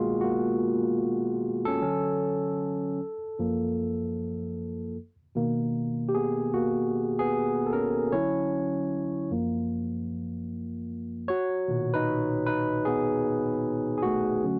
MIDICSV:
0, 0, Header, 1, 2, 480
1, 0, Start_track
1, 0, Tempo, 789474
1, 1096, Time_signature, 4, 2, 24, 8
1, 8873, End_track
2, 0, Start_track
2, 0, Title_t, "Tine electric piano"
2, 0, Program_c, 0, 4
2, 0, Control_c, 0, 64, 127
2, 0, Note_on_c, 0, 47, 50
2, 0, Note_on_c, 0, 51, 39
2, 0, Note_on_c, 0, 56, 53
2, 0, Note_on_c, 0, 58, 68
2, 0, Note_on_c, 0, 59, 67
2, 0, Note_on_c, 0, 65, 72
2, 0, Note_on_c, 0, 66, 88
2, 0, Note_on_c, 0, 68, 80
2, 113, Note_off_c, 0, 47, 0
2, 115, Note_off_c, 0, 51, 0
2, 124, Note_off_c, 0, 56, 0
2, 127, Note_off_c, 0, 66, 0
2, 127, Note_on_c, 0, 66, 65
2, 138, Note_off_c, 0, 65, 0
2, 146, Note_off_c, 0, 58, 0
2, 146, Note_on_c, 0, 58, 53
2, 740, Note_off_c, 0, 66, 0
2, 749, Note_off_c, 0, 58, 0
2, 1005, Note_on_c, 0, 69, 97
2, 1019, Note_on_c, 0, 61, 64
2, 1098, Note_on_c, 0, 50, 44
2, 1099, Note_off_c, 0, 61, 0
2, 1101, Note_on_c, 0, 54, 44
2, 1105, Control_c, 0, 64, 0
2, 1106, Note_off_c, 0, 68, 0
2, 1106, Note_on_c, 0, 61, 54
2, 1107, Note_off_c, 0, 59, 0
2, 1192, Control_c, 0, 64, 127
2, 1441, Note_off_c, 0, 50, 0
2, 1443, Note_off_c, 0, 54, 0
2, 1445, Note_off_c, 0, 61, 0
2, 1825, Control_c, 0, 64, 0
2, 1931, Control_c, 0, 64, 127
2, 1943, Note_off_c, 0, 69, 0
2, 2060, Note_on_c, 0, 42, 46
2, 2062, Note_on_c, 0, 53, 45
2, 2067, Note_on_c, 0, 58, 49
2, 2993, Note_off_c, 0, 42, 0
2, 2995, Note_off_c, 0, 53, 0
2, 2997, Note_off_c, 0, 58, 0
2, 3022, Control_c, 0, 64, 0
2, 3135, Control_c, 0, 64, 127
2, 3254, Note_on_c, 0, 47, 53
2, 3258, Note_on_c, 0, 51, 45
2, 3262, Note_on_c, 0, 58, 58
2, 3599, Note_off_c, 0, 47, 0
2, 3601, Note_off_c, 0, 51, 0
2, 3603, Note_off_c, 0, 58, 0
2, 3700, Note_on_c, 0, 67, 53
2, 3733, Note_off_c, 0, 67, 0
2, 3736, Note_on_c, 0, 68, 73
2, 3746, Note_on_c, 0, 59, 50
2, 3964, Note_off_c, 0, 59, 0
2, 3975, Note_on_c, 0, 66, 72
2, 3983, Note_off_c, 0, 68, 0
2, 3985, Note_on_c, 0, 58, 52
2, 4344, Note_off_c, 0, 66, 0
2, 4349, Note_off_c, 0, 58, 0
2, 4372, Note_on_c, 0, 68, 83
2, 4380, Note_on_c, 0, 59, 68
2, 4646, Note_off_c, 0, 68, 0
2, 4650, Note_off_c, 0, 59, 0
2, 4660, Note_on_c, 0, 69, 65
2, 4693, Note_off_c, 0, 69, 0
2, 4699, Note_on_c, 0, 70, 81
2, 4705, Note_on_c, 0, 61, 59
2, 4924, Note_off_c, 0, 61, 0
2, 4937, Note_on_c, 0, 50, 45
2, 4940, Note_on_c, 0, 73, 81
2, 4941, Note_on_c, 0, 54, 43
2, 4943, Note_on_c, 0, 61, 56
2, 4944, Note_off_c, 0, 70, 0
2, 4945, Control_c, 0, 64, 0
2, 4947, Note_on_c, 0, 64, 61
2, 5062, Control_c, 0, 64, 127
2, 5632, Note_off_c, 0, 50, 0
2, 5633, Note_off_c, 0, 73, 0
2, 5634, Note_off_c, 0, 54, 0
2, 5635, Note_off_c, 0, 61, 0
2, 5637, Note_off_c, 0, 64, 0
2, 5658, Note_on_c, 0, 42, 42
2, 5664, Note_on_c, 0, 53, 41
2, 5665, Control_c, 0, 64, 0
2, 5666, Note_on_c, 0, 58, 49
2, 5777, Control_c, 0, 64, 127
2, 6833, Note_off_c, 0, 42, 0
2, 6835, Note_off_c, 0, 53, 0
2, 6836, Note_off_c, 0, 58, 0
2, 6860, Note_on_c, 0, 73, 83
2, 6863, Control_c, 0, 64, 0
2, 6869, Note_on_c, 0, 66, 68
2, 6981, Control_c, 0, 64, 127
2, 7101, Note_on_c, 0, 47, 48
2, 7104, Note_on_c, 0, 51, 42
2, 7108, Note_on_c, 0, 46, 51
2, 7231, Note_off_c, 0, 66, 0
2, 7257, Note_on_c, 0, 71, 91
2, 7262, Note_off_c, 0, 73, 0
2, 7266, Note_on_c, 0, 63, 78
2, 7443, Note_off_c, 0, 47, 0
2, 7444, Note_off_c, 0, 51, 0
2, 7447, Note_off_c, 0, 46, 0
2, 7562, Note_off_c, 0, 63, 0
2, 7571, Note_off_c, 0, 71, 0
2, 7579, Note_on_c, 0, 71, 83
2, 7588, Note_on_c, 0, 63, 58
2, 7801, Note_off_c, 0, 71, 0
2, 7805, Note_off_c, 0, 63, 0
2, 7814, Note_on_c, 0, 68, 84
2, 7826, Note_on_c, 0, 59, 62
2, 8486, Note_off_c, 0, 59, 0
2, 8490, Note_off_c, 0, 68, 0
2, 8498, Note_on_c, 0, 68, 54
2, 8528, Note_on_c, 0, 66, 72
2, 8532, Note_off_c, 0, 68, 0
2, 8539, Note_on_c, 0, 57, 56
2, 8775, Note_on_c, 0, 50, 44
2, 8778, Note_on_c, 0, 54, 43
2, 8780, Note_on_c, 0, 61, 51
2, 8782, Control_c, 0, 64, 0
2, 8873, Note_off_c, 0, 50, 0
2, 8873, Note_off_c, 0, 54, 0
2, 8873, Note_off_c, 0, 57, 0
2, 8873, Note_off_c, 0, 61, 0
2, 8873, Note_off_c, 0, 66, 0
2, 8873, End_track
0, 0, End_of_file